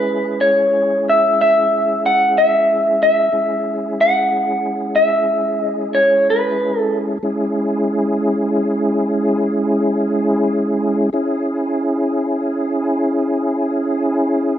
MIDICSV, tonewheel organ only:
0, 0, Header, 1, 2, 480
1, 0, Start_track
1, 0, Key_signature, 4, "minor"
1, 0, Tempo, 651466
1, 2443, Time_signature, 12, 3, 24, 8
1, 10746, End_track
2, 0, Start_track
2, 0, Title_t, "Tonewheel organ"
2, 0, Program_c, 0, 16
2, 0, Note_on_c, 0, 56, 53
2, 0, Note_on_c, 0, 61, 52
2, 0, Note_on_c, 0, 64, 54
2, 0, Note_on_c, 0, 68, 56
2, 2424, Note_off_c, 0, 64, 0
2, 2425, Note_off_c, 0, 56, 0
2, 2426, Note_off_c, 0, 61, 0
2, 2426, Note_off_c, 0, 68, 0
2, 2445, Note_on_c, 0, 68, 56
2, 2449, Note_on_c, 0, 61, 58
2, 2453, Note_on_c, 0, 64, 54
2, 2456, Note_on_c, 0, 56, 55
2, 5291, Note_off_c, 0, 68, 0
2, 5293, Note_off_c, 0, 61, 0
2, 5295, Note_off_c, 0, 64, 0
2, 5296, Note_off_c, 0, 56, 0
2, 5325, Note_on_c, 0, 56, 57
2, 5326, Note_on_c, 0, 68, 58
2, 5329, Note_on_c, 0, 61, 52
2, 5335, Note_on_c, 0, 64, 63
2, 8175, Note_off_c, 0, 56, 0
2, 8175, Note_off_c, 0, 68, 0
2, 8177, Note_off_c, 0, 61, 0
2, 8180, Note_off_c, 0, 64, 0
2, 8199, Note_on_c, 0, 68, 55
2, 8205, Note_on_c, 0, 64, 55
2, 8206, Note_on_c, 0, 61, 62
2, 10746, Note_off_c, 0, 61, 0
2, 10746, Note_off_c, 0, 64, 0
2, 10746, Note_off_c, 0, 68, 0
2, 10746, End_track
0, 0, End_of_file